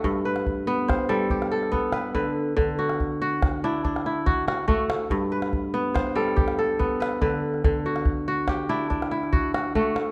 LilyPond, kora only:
<<
  \new Staff \with { instrumentName = "Kora" } { \time 12/8 \key d \mixolydian \tempo 4. = 95 fis'8 b'4. c''8 a'8 g'8 a'4 b'8 b'4~ | b'8 fis'4. r8 e'8 d'8 e'4 fis'8 fis'4~ | fis'8 b'4. c''8 a'8 g'8 a'4 b'8 b'4~ | b'8 fis'4. g'8 e'8 d'8 e'4 fis'8 fis'4 | }
  \new Staff \with { instrumentName = "Kora" } { \time 12/8 \key d \mixolydian g,4 r8 b4 g4 r8 b4 d4 | d4 r8 fis'4 d'4 r8 fis'4 a4 | g,4 r8 b4 g4 r8 b4 d4 | d4 r8 fis'4 d'4 r8 fis'4 a4 | }
>>